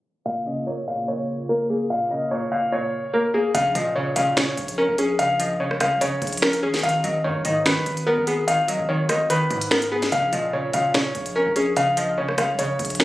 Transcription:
0.26 synth pluck A#2, analog synth pad C#3 A#3 F4 C#5, upright piano F5
0.46 synth pluck C#3, upright piano D#5
0.67 synth pluck A#2, upright piano C#5
0.88 synth pluck A#2, upright piano F5
1.08 synth pluck A#2, upright piano C#5
1.49 synth pluck A#3, upright piano A#4
1.70 synth pluck A#3, upright piano G#4
1.90 synth pluck A#2, upright piano F5
2.11 synth pluck C#3, upright piano D#5
2.31 synth pluck A#2, upright piano C#5
2.52 synth pluck A#2, upright piano F5
2.72 synth pluck A#2, upright piano C#5
3.14 synth pluck A#3, upright piano A#4
3.34 synth pluck A#3, upright piano G#4
3.55 808-style bass A#1, synth pluck C#3, upright piano F5, closed hi-hat
3.75 808-style bass A#2, synth pluck F3, upright piano D#5, closed hi-hat
3.96 synth pluck C#3, upright piano C#5
4.16 808-style bass A#2, synth pluck C#3, upright piano F5, closed hi-hat
4.37 synth pluck C#3, upright piano C#5, finger snap, snare, closed hi-hat
4.57 808-style bass A#1, closed hi-hat
4.68 closed hi-hat
4.78 synth pluck C#4, upright piano A#4
4.89 808-style bass A#1
4.98 synth pluck C#4, upright piano G#4, closed hi-hat
5.19 synth pluck C#3, upright piano F5, closed hi-hat
5.39 synth pluck F3, upright piano D#5, closed hi-hat
5.60 synth pluck C#3, upright piano C#5
5.71 cross-stick
5.80 808-style bass C#2, synth pluck C#3, upright piano F5, cross-stick, closed hi-hat
5.96 808-style bass A#1
6.01 synth pluck C#3, upright piano C#5, closed hi-hat
6.22 808-style bass A#1, closed hi-hat
6.27 closed hi-hat
6.33 closed hi-hat
6.37 closed hi-hat
6.42 synth pluck C#4, upright piano A#4, finger snap, snare
6.53 closed hi-hat
6.63 808-style bass G#1, synth pluck C#4, upright piano G#4
6.74 snare, closed hi-hat
6.79 closed hi-hat
6.83 808-style bass G#1, synth pluck D#3, upright piano F5, closed hi-hat
6.89 closed hi-hat
7.04 808-style bass G#1, synth pluck F#3, upright piano D#5, closed hi-hat
7.24 808-style bass G#2, synth pluck D#3, upright piano C#5
7.35 808-style bass G#1
7.45 808-style bass G#2, synth pluck D#3, upright piano D#5, closed hi-hat
7.66 synth pluck D#3, upright piano B4, finger snap, snare, closed hi-hat
7.77 808-style bass F#1
7.86 808-style bass G#1, closed hi-hat
7.97 closed hi-hat
8.06 synth pluck B3, upright piano A#4
8.18 808-style bass G#1
8.27 synth pluck B3, upright piano G#4, closed hi-hat
8.48 synth pluck D#3, upright piano F5, closed hi-hat
8.68 synth pluck F#3, upright piano D#5, closed hi-hat
8.79 808-style bass G#1
8.89 synth pluck D#3, upright piano C#5
9.09 synth pluck D#3, upright piano D#5, cross-stick, closed hi-hat
9.30 synth pluck D#3, upright piano B4, closed hi-hat
9.51 808-style bass G#2, closed hi-hat
9.61 closed hi-hat
9.71 synth pluck B3, upright piano A#4, finger snap, snare
9.82 closed hi-hat
9.92 synth pluck B3, upright piano G#4
10.02 snare, closed hi-hat
10.12 808-style bass A#1, synth pluck C#3, upright piano F5, closed hi-hat
10.33 808-style bass A#2, synth pluck F3, upright piano D#5, closed hi-hat
10.53 synth pluck C#3, upright piano C#5
10.73 808-style bass A#2, synth pluck C#3, upright piano F5, closed hi-hat
10.94 synth pluck C#3, upright piano C#5, finger snap, snare, closed hi-hat
11.15 808-style bass A#1, closed hi-hat
11.26 closed hi-hat
11.36 synth pluck C#4, upright piano A#4
11.46 808-style bass A#1
11.56 synth pluck C#4, upright piano G#4, closed hi-hat
11.77 synth pluck C#3, upright piano F5, closed hi-hat
11.97 synth pluck F3, upright piano D#5, closed hi-hat
12.18 synth pluck C#3, upright piano C#5
12.29 cross-stick
12.38 808-style bass C#2, synth pluck C#3, upright piano F5, cross-stick, closed hi-hat
12.54 808-style bass A#1
12.59 synth pluck C#3, upright piano C#5, closed hi-hat
12.79 808-style bass A#1, closed hi-hat
12.85 closed hi-hat
12.90 closed hi-hat
12.95 closed hi-hat
13.00 synth pluck C#4, upright piano A#4, finger snap, snare

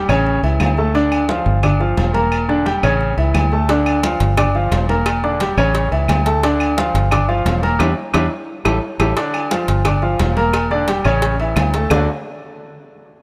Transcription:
0.09 fingered electric bass A1, grand piano C#3 C#4 C#5, low agogo, claves
0.26 high conga
0.43 fingered electric bass C#2, grand piano E3 E4 E5, high conga, low agogo
0.60 fingered electric bass D2, high conga, low timbale, low agogo, claves
0.78 grand piano A3 A4 A5, high conga
0.94 grand piano D3 D4 D5, high conga, low agogo
1.12 high conga, low agogo, claves
1.28 grand piano F3 F4 F5, high conga, low timbale, low agogo
1.46 fingered electric bass G1, high conga
1.63 grand piano D4 D5 D6, high conga, low conga, low agogo, claves
1.80 grand piano F3 F4 F5, high conga
1.97 fingered electric bass E1, high conga, low timbale, low agogo
2.14 grand piano A#3 A#4 A#5, high conga, low agogo
2.32 high conga, low agogo, claves
2.48 grand piano D3 D4 D5, high conga
2.65 grand piano G3 G4 G5, high conga, low timbale, low agogo
2.83 fingered electric bass A1, grand piano C#3 C#4 C#5, low agogo, claves
3.00 high conga
3.17 fingered electric bass C#2, grand piano E3 E4 E5, high conga, low agogo
3.34 fingered electric bass D2, high conga, low timbale, low agogo, claves
3.52 grand piano A3 A4 A5, high conga
3.69 grand piano D3 D4 D5, cowbell, high conga, low agogo
3.86 high conga, low agogo, claves
4.03 grand piano F3 F4 F5, cowbell, high conga, low timbale, low agogo
4.20 fingered electric bass G1, cowbell, high conga
4.37 grand piano D4 D5 D6, cowbell, high conga, low conga, low agogo, claves
4.55 grand piano F3 F4 F5, high conga
4.71 fingered electric bass E1, cowbell, high conga, low timbale, low agogo
4.89 grand piano A#3 A#4 A#5, high conga, low agogo
5.06 cowbell, low agogo, claves
5.23 grand piano D3 D4 D5, high conga
5.40 grand piano G3 G4 G5, cowbell, high conga, low timbale, low agogo
5.57 fingered electric bass A1, grand piano C#3 C#4 C#5, low agogo, claves
5.75 cowbell, high conga
5.91 fingered electric bass C#2, grand piano E3 E4 E5, high conga, low agogo
6.08 fingered electric bass D2, cowbell, high conga, low timbale, low agogo, claves
6.26 grand piano A3 A4 A5, cowbell, high conga
6.43 grand piano D3 D4 D5, cowbell, high conga, low agogo
6.60 high conga, low agogo, claves
6.77 grand piano F3 F4 F5, cowbell, high conga, low timbale, low agogo
6.94 fingered electric bass G1, cowbell, high conga
7.11 grand piano D4 D5 D6, cowbell, high conga, low conga, low agogo, claves
7.28 grand piano F3 F4 F5, high conga
7.45 fingered electric bass E1, cowbell, high conga, low timbale, low agogo
7.63 grand piano A#3 A#4 A#5, high conga, low agogo
7.79 fingered electric bass E2, grand piano D4 E4 G4, cowbell, high conga, high timbale, claves
8.13 fingered electric bass E2, grand piano D4 E4 G4, cowbell, high conga, high timbale, claves
8.65 fingered electric bass A1, grand piano E4 G4 A4, cowbell, high conga, high timbale, claves
8.99 fingered electric bass A1, grand piano E4 G4 A4, cowbell, high conga, high timbale, claves
9.17 grand piano D3 D4 D5, cowbell, high conga, low agogo
9.34 high conga, low agogo, claves
9.51 grand piano F3 F4 F5, cowbell, high conga, low timbale, low agogo
9.68 fingered electric bass G1, cowbell, high conga
9.85 grand piano D4 D5 D6, cowbell, high conga, low conga, low agogo, claves
10.02 grand piano F3 F4 F5, high conga
10.19 fingered electric bass E1, cowbell, high conga, low timbale, low agogo
10.37 grand piano A#3 A#4 A#5, high conga, low agogo
10.53 cowbell, low agogo, claves
10.71 grand piano D3 D4 D5, high conga
10.88 grand piano G3 G4 G5, cowbell, high conga, low timbale, low agogo
11.05 fingered electric bass A1, grand piano C#3 C#4 C#5, low agogo, claves
11.22 cowbell, high conga
11.40 grand piano E3 E4 E5, high conga, low agogo
11.56 fingered electric bass D2, cowbell, high conga, low timbale, low agogo, claves
11.74 grand piano A3 A4 A5, cowbell, high conga
11.90 fingered electric bass D2, grand piano D3 A3 D4 F#4 A4 D5, low bongo, low conga, low timbale, claves

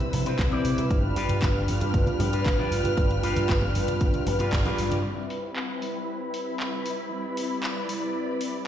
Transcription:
Already playing: analog polysynth G3 C4 E4 B4, string section C4 B5 E6
0.00 closed hi-hat, high conga
0.13 fingered electric bass C3, muted clean electric guitar stroke, open hi-hat, low conga
0.26 clean electric guitar C4 E4 B4, closed hi-hat, muted conga
0.39 fingered electric bass C2, kick, clap, closed hi-hat, high conga
0.51 clean electric guitar C4 E4 D5, low conga
0.65 fingered electric bass C3, open hi-hat
0.77 fingered electric bass C3, closed hi-hat, muted conga, high conga
0.90 fingered electric bass G1, analog polysynth G3 D4 F4 B4, string section B4 G5 F6, kick, closed hi-hat
1.16 fingered electric bass G2, clean electric guitar F4 G4 B4, open hi-hat
1.29 fingered electric bass G2, closed hi-hat, high conga
1.42 fingered electric bass G1, kick, clap, closed hi-hat
1.67 fingered electric bass G2, analog polysynth G3 D4 F4 B4, open hi-hat, high conga
1.81 fingered electric bass G2, muted clean electric guitar stroke, closed hi-hat, muted conga
1.94 fingered electric bass G1, kick, closed hi-hat
2.07 closed hi-hat, high conga
2.19 fingered electric bass G2, muted clean electric guitar stroke, open hi-hat, low conga
2.32 clean electric guitar F4 G4 B4, closed hi-hat
2.46 fingered electric bass G1, kick, clap, closed hi-hat, high conga
2.58 clean electric guitar F4 G4 B4, muted conga, low conga
2.71 fingered electric bass G2, open hi-hat
2.84 fingered electric bass G2, closed hi-hat, high conga
2.96 fingered electric bass G1, analog polysynth G3 D4 F4 B4, kick, closed hi-hat
3.11 closed hi-hat
3.23 fingered electric bass G2, clean electric guitar F4 G4 B4, open hi-hat
3.36 fingered electric bass G2, closed hi-hat, high conga
3.49 fingered electric bass G1, kick, clap, closed hi-hat
3.61 low conga
3.74 fingered electric bass G2, analog polysynth G3 D4 F4 B4, open hi-hat
3.88 fingered electric bass G2, muted clean electric guitar stroke, closed hi-hat, muted conga
4.01 fingered electric bass G1, kick, closed hi-hat
4.14 closed hi-hat, high conga
4.27 fingered electric bass G2, muted clean electric guitar stroke, open hi-hat, low conga
4.39 analog polysynth G3 D4 F4 D5, clean electric guitar F4 G4 B4, closed hi-hat, muted conga
4.52 fingered electric bass G1, kick, clap, closed hi-hat, high conga
4.65 clean electric guitar F4 G4 B4, closed hi-hat, low conga
4.78 fingered electric bass G2, open hi-hat
4.91 fingered electric bass G2, closed hi-hat, muted conga, high conga
5.03 analog polysynth G3 C4 E4 B4, string section C4 E4 B5
5.30 open hi-hat
5.56 clap
5.81 analog polysynth G3 C4 E4 B4, open hi-hat
6.34 open hi-hat
6.60 clap
6.86 open hi-hat
7.11 analog polysynth G3 C4 E4 B4, string section D5
7.37 open hi-hat
7.63 clap
7.88 analog polysynth G3 C4 E4 B4, open hi-hat
8.41 open hi-hat

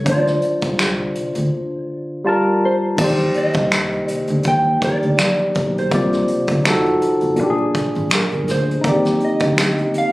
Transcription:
0.04 fingered electric bass D2, tine electric piano D3 D4, kick, closed hi-hat, muted conga
0.08 tine electric piano D#4 C5, clean electric guitar D5
0.15 tine electric piano F4
0.26 snare, muted conga, high conga
0.42 closed hi-hat
0.61 fingered electric bass C2, kick, closed hi-hat
0.79 finger snap, snare, closed hi-hat
1.15 muted fingered electric bass stroke, closed hi-hat
1.35 fingered electric bass D2, closed hi-hat, low conga
2.24 tine electric piano G3 F4 A5, clean electric guitar A#4
2.29 tine electric piano A#4
2.65 clean electric guitar C5
2.96 fingered electric bass D#2, tine electric piano D#3 A#3, kick, crash, low conga
3.01 tine electric piano G4 C5, clean electric guitar D5
3.19 closed hi-hat, muted conga, high conga
3.34 clean electric guitar D#5, closed hi-hat
3.53 fingered electric bass C2, kick, closed hi-hat
3.71 finger snap, snare, closed hi-hat, high conga
3.92 closed hi-hat
4.07 clean electric guitar D5, muted fingered electric bass stroke, closed hi-hat
4.27 fingered electric bass D2, closed hi-hat, low conga
4.43 fingered electric bass D#2, kick, closed hi-hat
4.48 clean electric guitar G5
4.65 muted conga
4.80 tine electric piano D#3 A#3 G4, kick, closed hi-hat
4.84 tine electric piano A#4, clean electric guitar D5
5.02 fingered electric bass D2, closed hi-hat
5.18 finger snap, snare, closed hi-hat, muted conga, high conga
5.40 muted conga, high conga
5.55 fingered electric bass B1, kick, closed hi-hat, low conga
5.78 clean electric guitar C5, closed hi-hat
5.90 fingered electric bass C2, tine electric piano C3 A#3 F4 D5, kick, closed hi-hat, muted conga, low conga
6.13 snare, closed hi-hat, muted conga, high conga
6.28 closed hi-hat
6.47 fingered electric bass D2, kick, closed hi-hat
6.64 fingered electric bass F1, tine electric piano F3 D#4 F#4 A4, finger snap, snare, closed hi-hat, muted conga, high conga
6.86 closed hi-hat
7.01 muted fingered electric bass stroke, closed hi-hat
7.21 fingered electric bass F1, closed hi-hat, low conga
7.35 fingered electric bass A#1, tine electric piano A#2 A#3, closed hi-hat
7.40 tine electric piano D4 G4
7.50 tine electric piano G#4
7.58 muted conga
7.74 kick, closed hi-hat
7.95 fingered electric bass G#1, closed hi-hat
8.11 finger snap, snare, closed hi-hat, high conga
8.15 clean electric guitar A#4
8.31 fingered electric bass G1, closed hi-hat, muted conga, high conga
8.48 fingered electric bass D2, clean electric guitar C5, snare, closed hi-hat, low conga
8.71 closed hi-hat
8.81 fingered electric bass D#2, tine electric piano A#3 D#4, kick, closed hi-hat, muted conga, low conga
8.87 tine electric piano C4 G4, clean electric guitar D5
9.05 snare, closed hi-hat, high conga
9.20 closed hi-hat
9.25 clean electric guitar D#5
9.39 fingered electric bass D2, kick, closed hi-hat
9.57 finger snap, snare, closed hi-hat, muted conga, high conga
9.78 closed hi-hat, muted conga
9.94 muted fingered electric bass stroke, closed hi-hat
9.98 clean electric guitar F5

